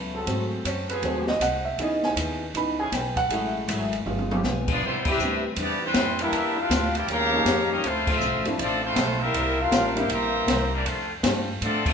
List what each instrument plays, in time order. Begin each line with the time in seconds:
Already playing: upright bass C#2, steel-string acoustic guitar F#3 B3 E4 A4, grand piano B5
0.13 trombone section F#3 C4 G#4 A4
0.27 upright bass G#2, grand piano F#3 A3 C4, steel-string acoustic guitar G#3 C4 F#4 A4, kick, ride
0.65 upright bass F#2, steel-string acoustic guitar G#3 C4 F#4 A4, grand piano C#5, kick, hi-hat pedal, ride
0.89 trombone section F#3 A3 C4 G#4, grand piano B4, ride
1.02 upright bass D#2, grand piano F#3 A3 C4 C5, steel-string acoustic guitar G#3 C4 F#4 A4, kick, ride
1.27 grand piano D#5, snare
1.40 upright bass C2, steel-string acoustic guitar G#3 C4 F#4 A4, grand piano F#5, kick, hi-hat pedal, ride
1.65 grand piano E5
1.78 upright bass C#2, steel-string acoustic guitar C#3 B3 E4 G#4, trombone section E3 B3 C#4 G#4, grand piano E3 B3 D#4 D#5, kick, ride
2.03 grand piano G#5, snare
2.16 upright bass D#2, steel-string acoustic guitar C#3 B3 E4 G#4, kick, hi-hat pedal, ride
2.54 upright bass C#2, steel-string acoustic guitar C#3 B3 E4 G#4, grand piano E3 B3 D#4 B5, kick, ride
2.78 trombone section E3 B3 C#4 G#4, grand piano G#5
2.92 upright bass B1, steel-string acoustic guitar C#3 B3 E4 G#4, grand piano G5, kick, snare, hi-hat pedal, ride
3.16 grand piano F#5, kick, ride
3.29 upright bass A1, steel-string acoustic guitar F#3 A3 E4 G#4, trombone section F#3 A3 E4 G#4, grand piano G#3 A3 E4, kick, ride
3.68 upright bass G#1, trombone section F#3 A3 E4 G#4, steel-string acoustic guitar F#3 A3 E4 G#4, kick, hi-hat pedal, ride
3.93 ride
4.06 upright bass G1, steel-string acoustic guitar G3 B3 F4 G#4, grand piano G#3 B3 F4, mid tom
4.19 mid tom
4.31 trombone section F3 G#3 B3 G4, mid tom
4.43 upright bass B1, steel-string acoustic guitar G3 B3 F4 G#4, snare, hi-hat pedal
4.68 trombone section F3 B3 D4, trumpet section B3 F4 G#4 D5, kick, crash
4.81 upright bass C2, steel-string acoustic guitar C3 G3 B3 E4, trombone section E3 G3 C4, kick
4.85 trumpet section G3 B3 E4 C5
5.05 trombone section E3 G3 B3 C4 E4 G4, kick, crash
5.09 trumpet section C4 G4 B4 E5
5.19 upright bass D2, steel-string acoustic guitar C3 G3 B3 E4, grand piano B3 C4 D4 E4 G4, hi-hat pedal
5.56 upright bass E2, steel-string acoustic guitar C3 G3 B3 E4, trombone section D4, kick, ride
5.61 trumpet section B3 E4 G4 D5
5.82 trombone section E3 G3 C4, trumpet section E4 B4 C5
5.86 trumpet section G3
5.94 upright bass F2, steel-string acoustic guitar C3 G3 B3 E4, kick, snare, hi-hat pedal, ride
6.19 trombone section E3 G3 A#3 D4 E4, trumpet section D4 G4 A#4 E5, ride
6.32 upright bass E2, steel-string acoustic guitar E3 A#3 D4 G4, kick, ride
6.59 trumpet section D4 G4 B4 F5, trombone section F4
6.70 upright bass D2, steel-string acoustic guitar E3 A#3 D4 G4, kick, snare, hi-hat pedal, ride
6.95 trombone section A#3 D4 G4, trumpet section E4 A#4 D5 G5, ride
7.08 upright bass D#2, trombone section C#3 G3 A#3, steel-string acoustic guitar D#3 C#4 F4 G4, trumpet section G4 C#5 F5 A#5, kick, ride
7.33 grand piano F3 A#3 C#4 D#4 G4
7.45 upright bass F2, steel-string acoustic guitar D#3 C#4 F4 G4, trombone section F3 C#4 D#4 G4, kick, snare, hi-hat pedal, ride
7.71 trombone section G3 A#3 D#4, trumpet section C#4 G4 A#4 D#5
7.83 upright bass D2, steel-string acoustic guitar D3 F3 C4, trombone section F3 A3 C4, trumpet section A3 E4 F4 C5, kick, ride
7.87 steel-string acoustic guitar E4
8.07 trombone section F3 A3 C4 D4 F4 C5, trumpet section C4 F4 A4 E5, kick, crash
8.20 upright bass C2, steel-string acoustic guitar D3 F3 C4 E4, hi-hat pedal
8.33 upright bass A1
8.45 upright bass F1, grand piano F3 A3 C4 D4 E4, ride
8.58 upright bass A1, steel-string acoustic guitar D3 F3 C4 E4, trombone section F3 A3 D4, trumpet section C4 F4 A4 D5, kick, ride
8.83 trombone section F3 A3 C4, trumpet section A3 E4 F4 C5
8.96 upright bass B1, steel-string acoustic guitar D3 F3 C4 E4, kick, snare, hi-hat pedal, ride
9.20 trombone section G3 A#3 E4, trumpet section C4 G4 A#4 E5
9.34 upright bass C2, steel-string acoustic guitar C3 G3 A#3 E4, trombone section G3 C4 E4 A#4, kick, ride
9.60 trumpet section D4 G4 A#4 F5, trombone section F4
9.71 upright bass A1, steel-string acoustic guitar C3 G3 A#3 E4, kick, snare, hi-hat pedal, ride
9.95 grand piano G3 A#3 C4 D4 E4, trombone section A#3 E4 G4, trumpet section E4 A#4 C5 G5, ride
10.09 upright bass A#1, steel-string acoustic guitar C3 G3 A#3 E4, trombone section E3 G3 A#3, trumpet section G4 C5 E5 A#5, kick, ride
10.47 upright bass C2, steel-string acoustic guitar C3 G3 A#3 E4, trombone section G3 C4 E4 C5, kick, snare, hi-hat pedal, ride
10.73 trumpet section A#3 E4 G4 D5, trombone section D4
10.85 upright bass F2, trombone section D3 A3 C4, steel-string acoustic guitar F3 C4 D4 A4, trumpet section A3 D4 F4 C5, kick, ride
11.23 upright bass G2, steel-string acoustic guitar F3 C4 D4 A4, grand piano G3 A3 C4 D4 F4, kick, snare, hi-hat pedal, ride
11.61 upright bass A2, trombone section D3 A3 D4, steel-string acoustic guitar F3 C4 D4 A4, trumpet section C4 F4 A4 D5, kick, ride
11.86 trombone section D3 A3 C4, trumpet section A3 D4 F4 C5, kick, crash